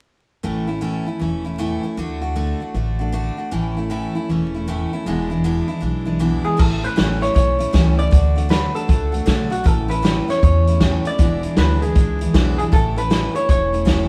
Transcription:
0.43 upright bass A1, steel-string acoustic guitar A2 E3 A3 C#4 E4
0.68 steel-string acoustic guitar A3 C#4 E4
0.81 steel-string acoustic guitar A2 E3 A3 C#4 E4
1.06 steel-string acoustic guitar A3 C#4 E4
1.20 upright bass E1, steel-string acoustic guitar E3 A3 C#4 E4
1.45 steel-string acoustic guitar A3 C#4 E4
1.58 steel-string acoustic guitar A2 E3 A3 C#4 E4
1.83 steel-string acoustic guitar A3 C#4 E4
1.97 upright bass D2, steel-string acoustic guitar D3 A3 D4 F#4
2.22 steel-string acoustic guitar A3 D4 F#4
2.36 steel-string acoustic guitar D3 A3 D4 F#4
2.60 steel-string acoustic guitar A3 D4 F#4
2.74 upright bass A1, steel-string acoustic guitar D3 A3 D4 F#4
2.99 steel-string acoustic guitar A3 D4 F#4
3.12 steel-string acoustic guitar D3 A3 D4 F#4
3.37 steel-string acoustic guitar A3 D4 F#4
3.51 upright bass A1, steel-string acoustic guitar A2 E3 A3 C#4 E4
3.76 steel-string acoustic guitar A3 C#4 E4
3.90 steel-string acoustic guitar A2 E3 A3 C#4 E4
4.15 steel-string acoustic guitar A3 C#4 E4
4.29 upright bass E1, steel-string acoustic guitar E3 A3 C#4 E4
4.54 steel-string acoustic guitar A3 C#4 E4
4.68 steel-string acoustic guitar A2 E3 A3 C#4 E4
4.93 steel-string acoustic guitar A3 C#4 E4
5.06 upright bass E1, steel-string acoustic guitar E2 B2 E3 G#3 D4 E4
5.30 steel-string acoustic guitar E3 G#3 D4 E4
5.44 steel-string acoustic guitar E2 B2 E3 G#3 D4 E4
5.68 steel-string acoustic guitar E3 G#3 D4 E4
5.80 upright bass B1, steel-string acoustic guitar E3 G#3 D4 E4
6.06 steel-string acoustic guitar E3 G#3 D4 E4
6.19 steel-string acoustic guitar E2 B2 E3 G#3 D4 E4
6.44 steel-string acoustic guitar E3 G#3 D4 E4, clean electric guitar G#4
6.57 upright bass A1, steel-string acoustic guitar A2 E3 A3 C#4 E4, clean electric guitar A4, kick, crash
6.83 steel-string acoustic guitar A3 C#4 E4, clean electric guitar B4, closed hi-hat
6.96 upright bass A1, steel-string acoustic guitar A2 E3 A3 C#4 E4, snare, closed hi-hat
7.21 steel-string acoustic guitar A3 C#4 E4, clean electric guitar C#5, snare, closed hi-hat
7.34 upright bass B1, steel-string acoustic guitar E3 A3 C#4 E4, clean electric guitar C#5, kick, closed hi-hat
7.59 steel-string acoustic guitar A3 C#4 E4, closed hi-hat
7.73 upright bass C#2, steel-string acoustic guitar A2 E3 A3 C#4 E4, kick, snare, closed hi-hat
7.97 steel-string acoustic guitar A3 C#4 E4, clean electric guitar D5, closed hi-hat
8.11 upright bass D2, steel-string acoustic guitar D3 A3 D4 F#4, kick, closed hi-hat
8.36 steel-string acoustic guitar A3 D4 F#4, closed hi-hat
8.49 steel-string acoustic guitar D3 A3 D4 F#4, clean electric guitar B4, snare, closed hi-hat
8.75 steel-string acoustic guitar A3 D4 F#4, clean electric guitar A4, closed hi-hat
8.88 upright bass C#2, steel-string acoustic guitar D3 A3 D4 F#4, kick, closed hi-hat
9.12 steel-string acoustic guitar A3 D4 F#4, closed hi-hat
9.26 upright bass B1, steel-string acoustic guitar D3 A3 D4 F#4, kick, snare, closed hi-hat
9.50 steel-string acoustic guitar A3 D4 F#4, clean electric guitar F#4, closed hi-hat
9.64 upright bass A1, steel-string acoustic guitar A2 E3 A3 C#4 E4, clean electric guitar A4, kick, closed hi-hat
9.88 steel-string acoustic guitar A3 C#4 E4, clean electric guitar B4, closed hi-hat
10.02 steel-string acoustic guitar A2 E3 A3 C#4 E4, snare, closed hi-hat
10.28 steel-string acoustic guitar A3 C#4 E4, clean electric guitar C#5, snare, closed hi-hat
10.42 upright bass E2, steel-string acoustic guitar E3 A3 C#4 E4, clean electric guitar C#5, kick, closed hi-hat
10.67 steel-string acoustic guitar A3 C#4 E4, closed hi-hat
10.80 steel-string acoustic guitar A2 E3 A3 C#4 E4, kick, snare, closed hi-hat
11.05 steel-string acoustic guitar A3 E4, clean electric guitar D5, closed hi-hat
11.18 upright bass E1, steel-string acoustic guitar E2 B2 E3 G#3 D4 E4, kick, closed hi-hat
11.43 steel-string acoustic guitar E3 G#3 D4 E4, closed hi-hat
11.57 upright bass D2, steel-string acoustic guitar E2 B2 E3 G#3 D4 E4, clean electric guitar B4, snare, closed hi-hat
11.82 steel-string acoustic guitar E3 G#3 D4 E4, clean electric guitar G#4, closed hi-hat
11.95 upright bass C#2, steel-string acoustic guitar E3 G#3 D4 E4, kick, closed hi-hat
12.21 steel-string acoustic guitar E3 G#3 D4 E4, closed hi-hat
12.34 upright bass B1, steel-string acoustic guitar E2 B2 E3 G#3 D4 E4, kick, snare, closed hi-hat
12.58 steel-string acoustic guitar E3 G#3 D4 E4, clean electric guitar G#4, closed hi-hat
12.72 upright bass A1, steel-string acoustic guitar A2 E3 A3 C#4 E4, clean electric guitar A4, kick, closed hi-hat
12.96 steel-string acoustic guitar A3 C#4 E4, clean electric guitar B4, closed hi-hat
13.10 steel-string acoustic guitar A2 E3 A3 C#4 E4, snare, closed hi-hat
13.35 steel-string acoustic guitar A3 C#4 E4, clean electric guitar C#5, closed hi-hat
13.49 upright bass E1, steel-string acoustic guitar E3 A3 C#4 E4, clean electric guitar C#5, kick, closed hi-hat
13.73 steel-string acoustic guitar A3 C#4 E4, closed hi-hat
13.85 steel-string acoustic guitar A2 E3 A3 C#4 E4, kick, snare, closed hi-hat

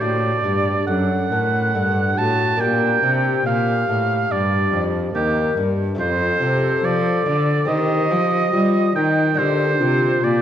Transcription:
Already playing: lute A3 D4
0.01 lute A2, cello A2, flute F#4, oboe D5
0.44 lute G2, cello G2, flute G4
0.87 lute F#2, cello F#2, flute A4, oboe F#5
1.31 cello A2, lute A2, flute A#4
1.75 cello G2, lute G2, flute A4
2.18 cello A2, lute A2, flute F#4, oboe A5
2.56 lute A#3 D4
2.60 cello A#2, lute A#2, flute G4, oboe G5
3.03 cello C3, lute C3
3.46 cello A#2, lute A#2, oboe F5
3.88 cello A2, lute A2
4.31 lute G2, cello G2, oboe D5
4.73 cello F2, lute F2
5.13 cello D#2, lute D#2, oboe G4, flute A#4
5.57 cello G2, lute G2
5.95 lute A3 F4
5.99 cello F2, lute F2, flute A4, oboe C5
6.41 cello C3, lute C3
6.84 cello F3, lute F3, oboe D5
7.26 lute D3, cello D3
7.65 cello D#3, lute D#3 C4 G4, flute G4, oboe D#5
8.11 cello F3, lute F3
8.53 cello G3, lute G3, flute F4
8.95 cello D#3, lute D#3, flute D#4, oboe G5
9.34 lute A#3 D4 F4, flute G4
9.38 cello D3, lute D3, oboe C5
9.80 cello C3, lute C3, flute F4
10.24 lute A#2, cello A#2, oboe D5

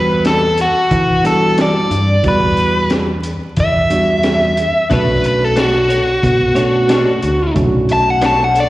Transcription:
Already playing: fingered electric bass E2, tine electric piano G3 B3 D4 F#4, overdriven electric guitar B4
0.25 overdriven electric guitar A4, snare, closed hi-hat
0.58 overdriven electric guitar F#4, closed hi-hat
0.91 fingered electric bass E3, kick, closed hi-hat
1.23 tine electric piano G3 B3 D4 F#4, overdriven electric guitar A4, closed hi-hat
1.58 overdriven electric guitar D5, snare, closed hi-hat
1.90 fingered electric bass G2, closed hi-hat
2.23 fingered electric bass E2, tine electric piano G3 B3 D4 F#4, kick, closed hi-hat
2.28 overdriven electric guitar B4
2.57 closed hi-hat
2.90 snare, closed hi-hat
3.23 closed hi-hat
3.56 fingered electric bass E2, overdriven electric guitar E5, kick, closed hi-hat
3.90 tine electric piano G3 B3 D4 F#4, closed hi-hat
4.23 snare, closed hi-hat
4.57 closed hi-hat
4.90 fingered electric bass B1, tine electric piano A3 C#4 D4 F#4, clean electric guitar B3 D4 A4 C#5, overdriven electric guitar B4, kick, closed hi-hat
5.24 overdriven electric guitar B4, closed hi-hat
5.44 overdriven electric guitar A4
5.56 clean electric guitar B3 D4 A4 C#5, overdriven electric guitar F#4, snare, closed hi-hat
5.89 clean electric guitar D4 A4 C#5, closed hi-hat
6.23 fingered electric bass B2, kick, closed hi-hat
6.55 tine electric piano A3 C#4 D4 F#4, clean electric guitar A4 C#5, closed hi-hat
6.59 clean electric guitar D4
6.88 clean electric guitar B3 D4 A4 C#5, snare, closed hi-hat
7.22 fingered electric bass D2, closed hi-hat
7.54 fingered electric bass B1, tine electric piano A3 C#4 D4 F#4, kick, closed hi-hat
7.89 overdriven electric guitar A5, closed hi-hat
8.10 overdriven electric guitar F#5
8.22 clean electric guitar B3 D4 A4 C#5, snare, closed hi-hat
8.26 overdriven electric guitar A5
8.44 overdriven electric guitar F#5
8.55 clean electric guitar D4 A4 C#5, closed hi-hat
8.60 overdriven electric guitar D5

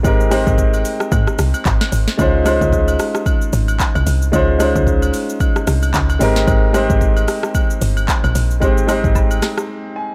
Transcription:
Already playing: grand piano G#3 C4 D#4 G4 A#4
0.03 log drum bass G#1, grand piano G#3 C4 D#4 G4 A#4, kick, high agogo, shaker
0.20 shaker
0.30 grand piano G#3 C4 D#4 G4 C5, cross-stick, open hi-hat, high agogo, shaker
0.47 log drum bass G#1, kick, shaker
0.58 kick, shaker
0.74 high agogo, shaker
0.85 open hi-hat, shaker
1.00 cross-stick, shaker
1.12 log drum bass G#2, kick, high agogo, shaker
1.27 cross-stick, shaker
1.39 log drum bass C2, cross-stick, open hi-hat, shaker
1.54 high agogo, shaker
1.65 log drum bass G#1, kick, clap, low woodblock, shaker
1.81 snare, high agogo, shaker
1.92 log drum bass G#1, open hi-hat, shaker
2.08 snare, shaker
2.17 log drum bass C#2, grand piano G#3 C#4 D#4 F4 C5, kick, high agogo, shaker
2.44 grand piano G#3 C#4 D#4 F4 C5, cross-stick, open hi-hat, high agogo, shaker
2.61 log drum bass C#2, kick, shaker
2.73 kick, shaker
2.88 high agogo, shaker
2.99 cross-stick, open hi-hat, shaker
3.15 cross-stick, shaker
3.26 kick, high agogo, shaker
3.42 shaker
3.53 log drum bass G#1, open hi-hat, shaker
3.68 high agogo, shaker
3.80 kick, clap, low woodblock, shaker
3.95 log drum bass C2, high agogo, shaker
4.07 log drum bass C2, open hi-hat, shaker
4.22 shaker
4.32 log drum bass C#2, grand piano G#3 C#4 D#4 F4 C5, kick, high agogo, shaker
4.58 grand piano G#3 C#4 D#4 F4 C5, cross-stick, open hi-hat, high agogo, shaker
4.76 log drum bass C#2, kick, shaker
4.87 kick, shaker
5.02 high agogo, shaker
5.14 open hi-hat, shaker
5.29 shaker
5.40 kick, high agogo, shaker
5.56 cross-stick, shaker
5.67 log drum bass C2, cross-stick, open hi-hat, shaker
5.83 high agogo, shaker
5.94 log drum bass C#2, kick, clap, low woodblock, shaker
6.10 high agogo, shaker
6.19 log drum bass G#1, grand piano G#3 C4 D#4 G4 A#4, open hi-hat, shaker
6.36 snare, shaker
6.47 log drum bass G#1, kick, high agogo, shaker
6.73 grand piano G#3 C4 D#4 G4 C5, cross-stick, open hi-hat, high agogo, shaker
6.90 log drum bass G#1, kick, shaker
7.01 kick, shaker
7.17 high agogo, shaker
7.28 cross-stick, open hi-hat, shaker
7.43 cross-stick, shaker
7.55 kick, high agogo, shaker
7.70 shaker
7.82 log drum bass G1, open hi-hat, shaker
7.97 high agogo, shaker
8.08 kick, clap, low woodblock, shaker
8.24 log drum bass A#1, high agogo, shaker
8.35 log drum bass A#1, open hi-hat, shaker
8.51 shaker
8.60 log drum bass G#1, grand piano G#3 C4 D#4 G4 C5, kick, high agogo, shaker
8.78 shaker
8.87 grand piano G#3 C4 D#4 G4 C5, cross-stick, open hi-hat, high agogo, shaker
9.04 log drum bass G#1, kick, shaker
9.15 kick, low woodblock, shaker
9.31 high agogo, shaker
9.42 cross-stick, snare, open hi-hat, shaker
9.58 cross-stick, shaker
9.96 grand piano G#5

